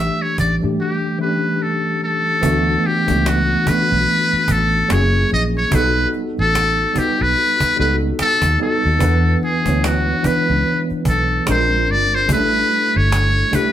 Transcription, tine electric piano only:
Already playing: E3 G3 A3 D4 G4
0.61 E3 G3 A3 D4
0.65 G4
1.19 E3 G3 A3 C#4
1.23 G4
1.28 D4
2.41 E3 A3 B3 D4
2.46 F#4
3.07 E3 A3 B3 D4
3.11 F#4
3.65 E3 A3 B3 D4
3.70 F#4
4.88 F#3 A#3 C#4 E4
4.93 G#4
5.71 G3 B3 D#4 F#4
5.75 A4
6.94 G3 B3 D#4 F#4
6.98 B4
7.76 G3 B3 D#4 F#4
7.81 A4
8.59 G3 B3 D#4 F#4
8.63 A4
8.99 E3 B3 D4 E4
9.03 B4
9.64 G#3 B3 D4 E4
9.68 C#5
10.22 E3 B3 D4 E4
10.27 B4
11.46 G#3 C4 D4 F4
11.50 A#4
12.28 G3 A3 C#4 E4
12.32 A4
12.37 D4
13.51 G3 A3 D4 E4 G4

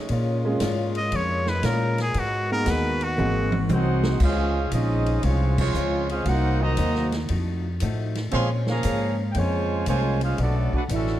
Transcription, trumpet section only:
3.73 D#4 G#4 C5 F#5
4.23 C#4 G#4 C5 F5
4.74 C#4 G#4 C5 D#5
5.24 G#3 C4 F4 C#5
5.60 G#3 F4 C5 C#5
6.11 C#4 G#4 C5 F5
6.29 D#4 A#4 C5 F#5
6.61 F#4 C5 D#5 A#5
8.34 G#4 C#5 F5 C6
8.69 G#4 C#5 F5 A#5
9.32 G5
9.38 F4 C5 C#5 G#5
9.89 F4 C5 C#5 G#5
10.24 C#4 G#4 C5 F5
10.42 B3 F#4 A4 D5
10.76 D4 A4 B4 F#5
10.95 C#4 F#4 A4 E5

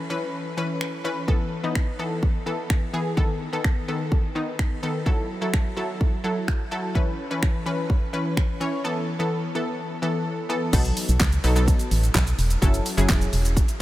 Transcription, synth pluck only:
0.10 E3 C#4 B4
0.57 E3 C#4 B4
1.04 E3 C#4 B4
1.28 E3 B3 A4
1.63 E3 B3 D#4
1.99 E3 B3 A4
2.46 E3 B3 A4
2.93 E3 B3 G#4
3.17 D#3 B3 A4
3.53 D#3 B3 A4
3.88 D#3 B3 A4
4.35 D#3 B3 D#4
4.83 D#3 B3 A4
5.06 F#3 E4 A4
5.41 F#3 E4 A4
5.77 F#3 E4 A4
6.24 F#3 E4 A4
6.71 F#3 E4 A4
6.95 E3 C#4 B4
7.30 E3 C#4 B4
7.66 E3 C#4 B4
8.13 E3 C#4 B4
8.60 E3 C#4 C#5
8.84 E3 B3 A4
9.19 E3 B3 A4
9.55 E3 B3 A4
10.02 E3 B3 A4
10.49 E3 B3 A4
10.73 F#3 B3 D#4 A4
11.44 F#3 B3 D#4 A4
11.56 F#3 B3 D#4 A4
12.62 F#3 C#4 E4 A4
12.97 F#3 C#4 E4 G#4

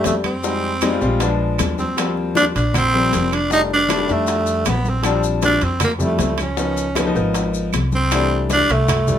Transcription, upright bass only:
0.05 F2
1.02 A#1
1.59 D#2
2.55 A#1
3.14 F1
4.09 F2
4.66 A#1
5.62 F2
6.19 C#2
7.15 G#1
7.73 C2
8.69 C2

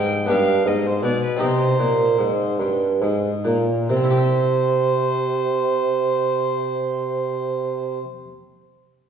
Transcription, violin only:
Already playing: G5
0.30 F5
0.67 D#5
0.87 C5
1.05 D5
1.24 B4
1.42 C5
3.89 C5

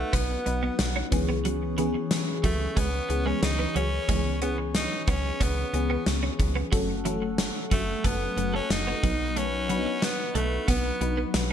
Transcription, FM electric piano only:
Already playing: F#3 B3 D#4 B4
0.46 F#3 B3 D#4 B4
1.11 E3 B3 C#4 G#4
1.77 E3 B3 C#4 G#4
3.09 E3 B3 C#4 G#4
4.08 E3 B3 C#4 G#4
4.41 E3 B3 C#4 G#4
5.73 E3 B3 C#4 G#4
6.72 F#3 A3 C#4 A4
7.05 F#3 A3 C#4 A4
8.36 F#3 A3 C#4 A4
9.03 F#3 B3 D#4 B4
9.69 F#3 B3 D4 B4
9.76 D#4
11.01 F#3 B3 D#4 B4

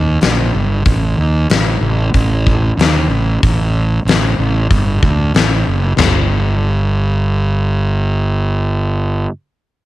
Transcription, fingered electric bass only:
Already playing: D#2
0.22 A#1
0.55 G1
0.85 A1
1.17 D#2
1.50 A1
1.81 A1
2.14 A1
2.77 D#2
3.08 A1
3.43 A1
4.05 A1
4.38 A1
4.70 G1
5.03 D2
5.35 A1
5.67 F#1
5.98 G1

